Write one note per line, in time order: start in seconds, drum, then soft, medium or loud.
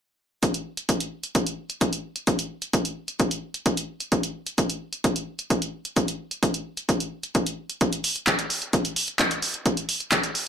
0.43 kick loud
0.43 closed hi-hat medium
0.54 closed hi-hat soft
0.77 closed hi-hat soft
0.89 kick medium
0.89 closed hi-hat medium
1.00 closed hi-hat soft
1.23 closed hi-hat soft
1.35 kick loud
1.35 closed hi-hat medium
1.47 closed hi-hat soft
1.70 closed hi-hat soft
1.81 kick medium
1.81 closed hi-hat medium
1.93 closed hi-hat soft
2.16 closed hi-hat soft
2.27 kick loud
2.27 closed hi-hat medium
2.39 closed hi-hat soft
2.62 closed hi-hat soft
2.73 kick loud
2.73 closed hi-hat medium
2.85 closed hi-hat soft
3.08 closed hi-hat soft
3.20 kick loud
3.20 closed hi-hat medium
3.31 closed hi-hat soft
3.54 closed hi-hat soft
3.66 kick medium
3.66 closed hi-hat medium
3.77 closed hi-hat soft
4.00 closed hi-hat soft
4.12 kick loud
4.12 closed hi-hat medium
4.23 closed hi-hat soft
4.46 closed hi-hat soft
4.58 kick loud
4.58 closed hi-hat medium
4.70 closed hi-hat soft
4.93 closed hi-hat soft
5.04 kick loud
5.04 closed hi-hat medium
5.16 closed hi-hat soft
5.39 closed hi-hat soft
5.50 kick loud
5.50 closed hi-hat medium
5.62 closed hi-hat soft
5.85 closed hi-hat soft
5.96 kick loud
5.96 closed hi-hat medium
6.08 closed hi-hat soft
6.31 closed hi-hat soft
6.43 kick loud
6.43 closed hi-hat medium
6.54 closed hi-hat soft
6.77 closed hi-hat soft
6.89 kick loud
6.89 closed hi-hat medium
7.00 closed hi-hat soft
7.23 closed hi-hat soft
7.35 kick loud
7.35 closed hi-hat medium
7.46 closed hi-hat soft
7.70 closed hi-hat soft
7.81 kick loud
7.81 closed hi-hat medium
7.93 closed hi-hat soft
8.04 open hi-hat medium
8.16 closed hi-hat soft
8.27 kick medium
8.27 clap loud
8.27 closed hi-hat medium
8.39 closed hi-hat soft
8.50 open hi-hat medium
8.62 closed hi-hat soft
8.73 kick loud
8.73 closed hi-hat medium
8.85 closed hi-hat soft
8.96 open hi-hat loud
9.08 closed hi-hat soft
9.19 kick loud
9.19 clap loud
9.19 closed hi-hat medium
9.31 closed hi-hat soft
9.42 open hi-hat medium
9.54 closed hi-hat soft
9.66 kick loud
9.66 closed hi-hat medium
9.77 closed hi-hat soft
9.89 open hi-hat medium
10.00 closed hi-hat soft
10.12 kick medium
10.12 clap loud
10.12 closed hi-hat medium
10.23 closed hi-hat soft
10.35 open hi-hat medium